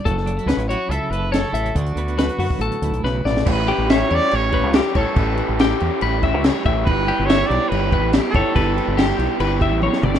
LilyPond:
<<
  \new Staff \with { instrumentName = "Clean electric guitar" } { \time 4/4 \key a \mixolydian \tempo 4 = 142 a'4 b'8 cis''8 e''4 cis''8 e''8 | d''4 b'8 fis'8 a'4 b'8 d''8 | r8 g'8 e''8 cis''4 b'8 g'8 cis''8 | b'4 g'4 b'8 e''8 cis''8 e''8 |
r8 g'8 e''8 cis''4 b'8 g'8 cis''8 | b'4 g'4 b'8 e''8 cis''8 d''8 | }
  \new Staff \with { instrumentName = "Trumpet" } { \time 4/4 \key a \mixolydian r4. fis'8 a'8 b'8 a'4 | fis'2. r4 | b'4 cis''8 d''8 cis''4 r8 a'8~ | a'4. r2 r8 |
b'4 cis''8 d''8 b'4 r8 a'8~ | a'4. r2 r8 | }
  \new Staff \with { instrumentName = "Overdriven electric guitar" } { \time 4/4 \key a \mixolydian r1 | r1 | <a, e g cis' g'>8 <g cis' g'>8 <e g cis' g'>8 <a, e g cis' g'>8 <e g cis' g'>8 <g cis' g'>8 <a, e g cis' g'>8 <g cis' g'>8 | <a, e g cis' g'>8 <g cis' g'>8 <e g cis' g'>8 <a, e g cis' g'>8 <e g cis' g'>8 <g cis' g'>8 <a, e g cis' g'>8 <g cis' g'>8 |
<g b e' g'>8 <b e' g'>8 <g b e' g'>8 <g b e' g'>8 <g b e' g'>8 <b e' g'>8 <g b e' g'>8 <b e' g'>8 | <g b e' g'>8 <b e' g'>8 <g b e' g'>8 <g b e' g'>8 <g b e' g'>8 <b e' g'>8 <g b e' g'>8 <b e' g'>8 | }
  \new Staff \with { instrumentName = "Clean electric guitar" } { \time 4/4 \key a \mixolydian << { r8 d'16 e'8. e'4 a'8 d'16 e'8. | r8 b4 b4 e'4. | r1 | r1 |
r1 | r1 | } \\ { fis4 cis'4 cis4. cis'8 | d4 fis4 a,4 cis8 b,8 | r1 | r1 |
r1 | r1 | } >> }
  \new Staff \with { instrumentName = "Fingered electric bass" } { \clef bass \time 4/4 \key a \mixolydian fis,,4 cis,16 a,,8 r16 cis,16 r16 fis,,4 a,,8 | d,8 d,4 fis,16 r16 a,,16 r16 d,16 b,,16 b,,8 a,,8 | a,,8. a,,8. e,16 r16 a,,8. cis,8 r16 a,,16 r16 | a,,8. a,,8. e,16 r16 a,,8. cis,8 r16 a,,8 |
g,,8. g,,8. b,,16 r16 g,,8. a,,8 r16 g,,16 r16 | g,,8. g,,8. b,,16 r16 g,,8. a,,8 r16 g,,8 | }
  \new DrumStaff \with { instrumentName = "Drums" } \drummode { \time 4/4 <hh bd>16 sn16 hh16 hh16 <hh sn>16 hh16 hh8 hh8 hh8 <hh sn>8 hh16 hh16 | <hh bd>16 hh16 hh16 hh16 <hh sn>16 hh16 hho16 bd16 hh16 hh16 hh16 hh16 sn8 sn16 sn16 | <cymc bd>8 cymc8 <cymc sn>8 cymc8 cymc8 <cymc bd>8 <cymc sn>8 <cymc bd>8 | <cymc bd>8 cymc8 <cymc sn>8 cymc8 cymc8 <cymc bd>8 <cymc sn>8 <cymc bd>8 |
<cymc bd>8 cymc8 <cymc sn>8 cymc8 cymc8 <cymc bd>8 <cymc sn>8 <cymc bd>8 | <cymc bd>8 cymc8 <cymc sn>8 cymc8 cymc8 <cymc bd>8 tommh16 sn16 toml16 sn16 | }
>>